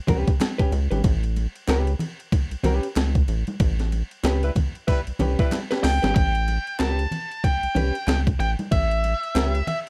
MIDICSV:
0, 0, Header, 1, 6, 480
1, 0, Start_track
1, 0, Tempo, 639659
1, 785, Time_signature, 4, 2, 24, 8
1, 7422, End_track
2, 0, Start_track
2, 0, Title_t, "Lead electric guitar"
2, 0, Program_c, 0, 29
2, 4380, Note_on_c, 0, 79, 90
2, 4607, Note_off_c, 0, 79, 0
2, 4616, Note_on_c, 0, 79, 112
2, 5069, Note_off_c, 0, 79, 0
2, 5100, Note_on_c, 0, 81, 114
2, 5584, Note_on_c, 0, 79, 106
2, 5595, Note_off_c, 0, 81, 0
2, 6056, Note_off_c, 0, 79, 0
2, 6065, Note_on_c, 0, 79, 108
2, 6129, Note_off_c, 0, 79, 0
2, 6303, Note_on_c, 0, 79, 85
2, 6367, Note_off_c, 0, 79, 0
2, 6543, Note_on_c, 0, 76, 96
2, 7253, Note_off_c, 0, 76, 0
2, 7262, Note_on_c, 0, 76, 95
2, 7327, Note_off_c, 0, 76, 0
2, 7422, End_track
3, 0, Start_track
3, 0, Title_t, "Hollow-body jazz guitar"
3, 0, Program_c, 1, 26
3, 54, Note_on_c, 1, 61, 83
3, 62, Note_on_c, 1, 67, 81
3, 68, Note_on_c, 1, 71, 85
3, 227, Note_off_c, 1, 61, 0
3, 231, Note_off_c, 1, 67, 0
3, 234, Note_off_c, 1, 71, 0
3, 438, Note_on_c, 1, 71, 86
3, 448, Note_on_c, 1, 67, 72
3, 454, Note_on_c, 1, 61, 81
3, 530, Note_off_c, 1, 71, 0
3, 536, Note_off_c, 1, 67, 0
3, 539, Note_off_c, 1, 61, 0
3, 679, Note_on_c, 1, 71, 64
3, 687, Note_on_c, 1, 67, 62
3, 694, Note_on_c, 1, 61, 55
3, 752, Note_off_c, 1, 71, 0
3, 756, Note_off_c, 1, 67, 0
3, 760, Note_off_c, 1, 61, 0
3, 1257, Note_on_c, 1, 61, 72
3, 1265, Note_on_c, 1, 67, 97
3, 1272, Note_on_c, 1, 71, 98
3, 1428, Note_off_c, 1, 61, 0
3, 1431, Note_off_c, 1, 67, 0
3, 1435, Note_off_c, 1, 71, 0
3, 1978, Note_on_c, 1, 61, 90
3, 1987, Note_on_c, 1, 67, 96
3, 1994, Note_on_c, 1, 71, 91
3, 2148, Note_off_c, 1, 61, 0
3, 2152, Note_off_c, 1, 67, 0
3, 2156, Note_off_c, 1, 71, 0
3, 3178, Note_on_c, 1, 61, 85
3, 3185, Note_on_c, 1, 67, 90
3, 3192, Note_on_c, 1, 71, 98
3, 3311, Note_off_c, 1, 61, 0
3, 3314, Note_off_c, 1, 67, 0
3, 3318, Note_off_c, 1, 71, 0
3, 3900, Note_on_c, 1, 61, 87
3, 3906, Note_on_c, 1, 67, 82
3, 3912, Note_on_c, 1, 71, 96
3, 4031, Note_off_c, 1, 61, 0
3, 4035, Note_off_c, 1, 67, 0
3, 4038, Note_off_c, 1, 71, 0
3, 4282, Note_on_c, 1, 71, 92
3, 4290, Note_on_c, 1, 67, 84
3, 4297, Note_on_c, 1, 61, 72
3, 4371, Note_off_c, 1, 71, 0
3, 4375, Note_off_c, 1, 67, 0
3, 4378, Note_off_c, 1, 61, 0
3, 4520, Note_on_c, 1, 71, 57
3, 4529, Note_on_c, 1, 67, 61
3, 4535, Note_on_c, 1, 61, 55
3, 4591, Note_off_c, 1, 71, 0
3, 4595, Note_off_c, 1, 67, 0
3, 4599, Note_off_c, 1, 61, 0
3, 5097, Note_on_c, 1, 61, 70
3, 5107, Note_on_c, 1, 67, 91
3, 5112, Note_on_c, 1, 71, 88
3, 5267, Note_off_c, 1, 61, 0
3, 5271, Note_off_c, 1, 67, 0
3, 5274, Note_off_c, 1, 71, 0
3, 5815, Note_on_c, 1, 61, 86
3, 5823, Note_on_c, 1, 67, 86
3, 5829, Note_on_c, 1, 71, 89
3, 5949, Note_off_c, 1, 61, 0
3, 5953, Note_off_c, 1, 67, 0
3, 5956, Note_off_c, 1, 71, 0
3, 7015, Note_on_c, 1, 61, 80
3, 7023, Note_on_c, 1, 67, 92
3, 7030, Note_on_c, 1, 71, 91
3, 7186, Note_off_c, 1, 61, 0
3, 7190, Note_off_c, 1, 67, 0
3, 7193, Note_off_c, 1, 71, 0
3, 7422, End_track
4, 0, Start_track
4, 0, Title_t, "Horn section"
4, 0, Program_c, 2, 61
4, 3328, Note_on_c, 2, 55, 88
4, 3328, Note_on_c, 2, 64, 90
4, 3328, Note_on_c, 2, 71, 91
4, 3389, Note_off_c, 2, 55, 0
4, 3389, Note_off_c, 2, 64, 0
4, 3389, Note_off_c, 2, 71, 0
4, 3660, Note_on_c, 2, 55, 101
4, 3661, Note_on_c, 2, 71, 106
4, 3662, Note_on_c, 2, 64, 95
4, 3753, Note_off_c, 2, 55, 0
4, 3753, Note_off_c, 2, 64, 0
4, 3753, Note_off_c, 2, 71, 0
4, 4047, Note_on_c, 2, 55, 104
4, 4047, Note_on_c, 2, 64, 102
4, 4048, Note_on_c, 2, 71, 103
4, 4200, Note_off_c, 2, 55, 0
4, 4200, Note_off_c, 2, 64, 0
4, 4200, Note_off_c, 2, 71, 0
4, 7422, End_track
5, 0, Start_track
5, 0, Title_t, "Analog synth bass"
5, 0, Program_c, 3, 38
5, 65, Note_on_c, 3, 36, 95
5, 186, Note_off_c, 3, 36, 0
5, 540, Note_on_c, 3, 37, 98
5, 663, Note_off_c, 3, 37, 0
5, 685, Note_on_c, 3, 32, 85
5, 767, Note_off_c, 3, 32, 0
5, 781, Note_on_c, 3, 33, 113
5, 1105, Note_off_c, 3, 33, 0
5, 1263, Note_on_c, 3, 37, 109
5, 1465, Note_off_c, 3, 37, 0
5, 1885, Note_on_c, 3, 36, 53
5, 1924, Note_off_c, 3, 36, 0
5, 1981, Note_on_c, 3, 36, 91
5, 2103, Note_off_c, 3, 36, 0
5, 2223, Note_on_c, 3, 37, 94
5, 2425, Note_off_c, 3, 37, 0
5, 2462, Note_on_c, 3, 33, 88
5, 2583, Note_off_c, 3, 33, 0
5, 2701, Note_on_c, 3, 33, 114
5, 3024, Note_off_c, 3, 33, 0
5, 3180, Note_on_c, 3, 37, 97
5, 3383, Note_off_c, 3, 37, 0
5, 3808, Note_on_c, 3, 36, 47
5, 3846, Note_off_c, 3, 36, 0
5, 3906, Note_on_c, 3, 36, 96
5, 4025, Note_off_c, 3, 36, 0
5, 4381, Note_on_c, 3, 37, 104
5, 4502, Note_off_c, 3, 37, 0
5, 4528, Note_on_c, 3, 32, 78
5, 4608, Note_off_c, 3, 32, 0
5, 4622, Note_on_c, 3, 33, 119
5, 4944, Note_off_c, 3, 33, 0
5, 5104, Note_on_c, 3, 37, 103
5, 5304, Note_off_c, 3, 37, 0
5, 5726, Note_on_c, 3, 36, 50
5, 5764, Note_off_c, 3, 36, 0
5, 5820, Note_on_c, 3, 36, 90
5, 5942, Note_off_c, 3, 36, 0
5, 6058, Note_on_c, 3, 37, 90
5, 6261, Note_off_c, 3, 37, 0
5, 6300, Note_on_c, 3, 33, 87
5, 6422, Note_off_c, 3, 33, 0
5, 6541, Note_on_c, 3, 33, 104
5, 6864, Note_off_c, 3, 33, 0
5, 7018, Note_on_c, 3, 37, 100
5, 7222, Note_off_c, 3, 37, 0
5, 7422, End_track
6, 0, Start_track
6, 0, Title_t, "Drums"
6, 57, Note_on_c, 9, 62, 64
6, 57, Note_on_c, 9, 64, 94
6, 63, Note_on_c, 9, 36, 98
6, 63, Note_on_c, 9, 53, 68
6, 132, Note_off_c, 9, 62, 0
6, 132, Note_off_c, 9, 64, 0
6, 138, Note_off_c, 9, 36, 0
6, 138, Note_off_c, 9, 53, 0
6, 206, Note_on_c, 9, 53, 53
6, 207, Note_on_c, 9, 36, 111
6, 281, Note_off_c, 9, 53, 0
6, 282, Note_off_c, 9, 36, 0
6, 303, Note_on_c, 9, 63, 91
6, 304, Note_on_c, 9, 53, 85
6, 305, Note_on_c, 9, 39, 99
6, 310, Note_on_c, 9, 38, 112
6, 378, Note_off_c, 9, 63, 0
6, 379, Note_off_c, 9, 53, 0
6, 380, Note_off_c, 9, 39, 0
6, 385, Note_off_c, 9, 38, 0
6, 445, Note_on_c, 9, 53, 45
6, 446, Note_on_c, 9, 36, 104
6, 520, Note_off_c, 9, 53, 0
6, 521, Note_off_c, 9, 36, 0
6, 543, Note_on_c, 9, 53, 63
6, 618, Note_off_c, 9, 53, 0
6, 686, Note_on_c, 9, 53, 47
6, 691, Note_on_c, 9, 63, 83
6, 761, Note_off_c, 9, 53, 0
6, 766, Note_off_c, 9, 63, 0
6, 780, Note_on_c, 9, 53, 83
6, 782, Note_on_c, 9, 36, 127
6, 855, Note_off_c, 9, 53, 0
6, 857, Note_off_c, 9, 36, 0
6, 927, Note_on_c, 9, 53, 43
6, 1002, Note_off_c, 9, 53, 0
6, 1024, Note_on_c, 9, 53, 52
6, 1026, Note_on_c, 9, 62, 40
6, 1099, Note_off_c, 9, 53, 0
6, 1101, Note_off_c, 9, 62, 0
6, 1167, Note_on_c, 9, 53, 43
6, 1242, Note_off_c, 9, 53, 0
6, 1263, Note_on_c, 9, 39, 112
6, 1264, Note_on_c, 9, 53, 75
6, 1266, Note_on_c, 9, 63, 75
6, 1270, Note_on_c, 9, 38, 115
6, 1338, Note_off_c, 9, 39, 0
6, 1339, Note_off_c, 9, 53, 0
6, 1341, Note_off_c, 9, 63, 0
6, 1345, Note_off_c, 9, 38, 0
6, 1404, Note_on_c, 9, 53, 44
6, 1479, Note_off_c, 9, 53, 0
6, 1496, Note_on_c, 9, 64, 76
6, 1503, Note_on_c, 9, 53, 69
6, 1571, Note_off_c, 9, 64, 0
6, 1578, Note_off_c, 9, 53, 0
6, 1649, Note_on_c, 9, 53, 39
6, 1724, Note_off_c, 9, 53, 0
6, 1743, Note_on_c, 9, 62, 66
6, 1744, Note_on_c, 9, 36, 98
6, 1746, Note_on_c, 9, 53, 72
6, 1818, Note_off_c, 9, 62, 0
6, 1819, Note_off_c, 9, 36, 0
6, 1821, Note_off_c, 9, 53, 0
6, 1886, Note_on_c, 9, 53, 49
6, 1961, Note_off_c, 9, 53, 0
6, 1977, Note_on_c, 9, 62, 58
6, 1977, Note_on_c, 9, 64, 79
6, 1982, Note_on_c, 9, 53, 74
6, 2052, Note_off_c, 9, 62, 0
6, 2052, Note_off_c, 9, 64, 0
6, 2058, Note_off_c, 9, 53, 0
6, 2126, Note_on_c, 9, 53, 53
6, 2201, Note_off_c, 9, 53, 0
6, 2222, Note_on_c, 9, 53, 86
6, 2223, Note_on_c, 9, 63, 81
6, 2224, Note_on_c, 9, 39, 100
6, 2229, Note_on_c, 9, 38, 127
6, 2297, Note_off_c, 9, 53, 0
6, 2298, Note_off_c, 9, 63, 0
6, 2299, Note_off_c, 9, 39, 0
6, 2304, Note_off_c, 9, 38, 0
6, 2364, Note_on_c, 9, 53, 47
6, 2365, Note_on_c, 9, 36, 94
6, 2439, Note_off_c, 9, 53, 0
6, 2440, Note_off_c, 9, 36, 0
6, 2462, Note_on_c, 9, 53, 62
6, 2537, Note_off_c, 9, 53, 0
6, 2604, Note_on_c, 9, 53, 42
6, 2610, Note_on_c, 9, 63, 83
6, 2679, Note_off_c, 9, 53, 0
6, 2685, Note_off_c, 9, 63, 0
6, 2700, Note_on_c, 9, 53, 86
6, 2702, Note_on_c, 9, 36, 127
6, 2775, Note_off_c, 9, 53, 0
6, 2777, Note_off_c, 9, 36, 0
6, 2847, Note_on_c, 9, 53, 46
6, 2852, Note_on_c, 9, 38, 40
6, 2923, Note_off_c, 9, 53, 0
6, 2927, Note_off_c, 9, 38, 0
6, 2944, Note_on_c, 9, 53, 54
6, 2944, Note_on_c, 9, 62, 43
6, 3019, Note_off_c, 9, 53, 0
6, 3019, Note_off_c, 9, 62, 0
6, 3086, Note_on_c, 9, 53, 38
6, 3161, Note_off_c, 9, 53, 0
6, 3180, Note_on_c, 9, 53, 74
6, 3184, Note_on_c, 9, 63, 71
6, 3185, Note_on_c, 9, 39, 103
6, 3187, Note_on_c, 9, 38, 112
6, 3255, Note_off_c, 9, 53, 0
6, 3259, Note_off_c, 9, 63, 0
6, 3260, Note_off_c, 9, 39, 0
6, 3262, Note_off_c, 9, 38, 0
6, 3324, Note_on_c, 9, 53, 47
6, 3399, Note_off_c, 9, 53, 0
6, 3418, Note_on_c, 9, 64, 73
6, 3422, Note_on_c, 9, 36, 97
6, 3422, Note_on_c, 9, 53, 67
6, 3493, Note_off_c, 9, 64, 0
6, 3497, Note_off_c, 9, 36, 0
6, 3497, Note_off_c, 9, 53, 0
6, 3566, Note_on_c, 9, 53, 35
6, 3641, Note_off_c, 9, 53, 0
6, 3662, Note_on_c, 9, 36, 94
6, 3662, Note_on_c, 9, 53, 68
6, 3664, Note_on_c, 9, 62, 59
6, 3737, Note_off_c, 9, 36, 0
6, 3737, Note_off_c, 9, 53, 0
6, 3739, Note_off_c, 9, 62, 0
6, 3804, Note_on_c, 9, 53, 47
6, 3879, Note_off_c, 9, 53, 0
6, 3897, Note_on_c, 9, 62, 58
6, 3897, Note_on_c, 9, 64, 82
6, 3900, Note_on_c, 9, 53, 67
6, 3972, Note_off_c, 9, 62, 0
6, 3972, Note_off_c, 9, 64, 0
6, 3975, Note_off_c, 9, 53, 0
6, 4044, Note_on_c, 9, 53, 49
6, 4045, Note_on_c, 9, 36, 107
6, 4119, Note_off_c, 9, 53, 0
6, 4120, Note_off_c, 9, 36, 0
6, 4139, Note_on_c, 9, 53, 83
6, 4140, Note_on_c, 9, 63, 91
6, 4144, Note_on_c, 9, 39, 106
6, 4145, Note_on_c, 9, 38, 62
6, 4214, Note_off_c, 9, 53, 0
6, 4215, Note_off_c, 9, 63, 0
6, 4219, Note_off_c, 9, 39, 0
6, 4220, Note_off_c, 9, 38, 0
6, 4284, Note_on_c, 9, 53, 48
6, 4291, Note_on_c, 9, 38, 77
6, 4359, Note_off_c, 9, 53, 0
6, 4366, Note_off_c, 9, 38, 0
6, 4381, Note_on_c, 9, 46, 83
6, 4381, Note_on_c, 9, 53, 65
6, 4387, Note_on_c, 9, 38, 109
6, 4456, Note_off_c, 9, 46, 0
6, 4456, Note_off_c, 9, 53, 0
6, 4462, Note_off_c, 9, 38, 0
6, 4524, Note_on_c, 9, 53, 41
6, 4529, Note_on_c, 9, 63, 89
6, 4532, Note_on_c, 9, 38, 96
6, 4599, Note_off_c, 9, 53, 0
6, 4605, Note_off_c, 9, 63, 0
6, 4607, Note_off_c, 9, 38, 0
6, 4621, Note_on_c, 9, 36, 127
6, 4621, Note_on_c, 9, 53, 79
6, 4696, Note_off_c, 9, 36, 0
6, 4696, Note_off_c, 9, 53, 0
6, 4765, Note_on_c, 9, 53, 43
6, 4840, Note_off_c, 9, 53, 0
6, 4861, Note_on_c, 9, 53, 57
6, 4864, Note_on_c, 9, 62, 41
6, 4936, Note_off_c, 9, 53, 0
6, 4939, Note_off_c, 9, 62, 0
6, 5006, Note_on_c, 9, 53, 38
6, 5081, Note_off_c, 9, 53, 0
6, 5099, Note_on_c, 9, 39, 115
6, 5102, Note_on_c, 9, 53, 73
6, 5104, Note_on_c, 9, 63, 69
6, 5108, Note_on_c, 9, 38, 116
6, 5174, Note_off_c, 9, 39, 0
6, 5177, Note_off_c, 9, 53, 0
6, 5179, Note_off_c, 9, 63, 0
6, 5183, Note_off_c, 9, 38, 0
6, 5245, Note_on_c, 9, 53, 46
6, 5320, Note_off_c, 9, 53, 0
6, 5338, Note_on_c, 9, 64, 71
6, 5342, Note_on_c, 9, 53, 61
6, 5413, Note_off_c, 9, 64, 0
6, 5417, Note_off_c, 9, 53, 0
6, 5489, Note_on_c, 9, 53, 39
6, 5564, Note_off_c, 9, 53, 0
6, 5582, Note_on_c, 9, 36, 101
6, 5584, Note_on_c, 9, 62, 70
6, 5585, Note_on_c, 9, 53, 74
6, 5657, Note_off_c, 9, 36, 0
6, 5659, Note_off_c, 9, 62, 0
6, 5660, Note_off_c, 9, 53, 0
6, 5727, Note_on_c, 9, 53, 49
6, 5802, Note_off_c, 9, 53, 0
6, 5819, Note_on_c, 9, 62, 62
6, 5819, Note_on_c, 9, 64, 86
6, 5824, Note_on_c, 9, 53, 67
6, 5894, Note_off_c, 9, 62, 0
6, 5894, Note_off_c, 9, 64, 0
6, 5899, Note_off_c, 9, 53, 0
6, 5966, Note_on_c, 9, 53, 50
6, 6041, Note_off_c, 9, 53, 0
6, 6061, Note_on_c, 9, 39, 102
6, 6061, Note_on_c, 9, 63, 87
6, 6063, Note_on_c, 9, 53, 84
6, 6070, Note_on_c, 9, 38, 116
6, 6136, Note_off_c, 9, 39, 0
6, 6136, Note_off_c, 9, 63, 0
6, 6138, Note_off_c, 9, 53, 0
6, 6145, Note_off_c, 9, 38, 0
6, 6205, Note_on_c, 9, 36, 101
6, 6207, Note_on_c, 9, 53, 44
6, 6280, Note_off_c, 9, 36, 0
6, 6282, Note_off_c, 9, 53, 0
6, 6305, Note_on_c, 9, 53, 60
6, 6380, Note_off_c, 9, 53, 0
6, 6446, Note_on_c, 9, 53, 43
6, 6448, Note_on_c, 9, 63, 84
6, 6521, Note_off_c, 9, 53, 0
6, 6523, Note_off_c, 9, 63, 0
6, 6541, Note_on_c, 9, 36, 119
6, 6541, Note_on_c, 9, 53, 86
6, 6616, Note_off_c, 9, 53, 0
6, 6617, Note_off_c, 9, 36, 0
6, 6688, Note_on_c, 9, 53, 44
6, 6763, Note_off_c, 9, 53, 0
6, 6783, Note_on_c, 9, 53, 59
6, 6785, Note_on_c, 9, 62, 38
6, 6858, Note_off_c, 9, 53, 0
6, 6860, Note_off_c, 9, 62, 0
6, 6929, Note_on_c, 9, 53, 37
6, 7004, Note_off_c, 9, 53, 0
6, 7023, Note_on_c, 9, 39, 107
6, 7023, Note_on_c, 9, 53, 78
6, 7024, Note_on_c, 9, 63, 74
6, 7030, Note_on_c, 9, 38, 120
6, 7098, Note_off_c, 9, 39, 0
6, 7098, Note_off_c, 9, 53, 0
6, 7099, Note_off_c, 9, 63, 0
6, 7105, Note_off_c, 9, 38, 0
6, 7164, Note_on_c, 9, 53, 46
6, 7239, Note_off_c, 9, 53, 0
6, 7257, Note_on_c, 9, 64, 76
6, 7260, Note_on_c, 9, 53, 68
6, 7333, Note_off_c, 9, 64, 0
6, 7335, Note_off_c, 9, 53, 0
6, 7422, End_track
0, 0, End_of_file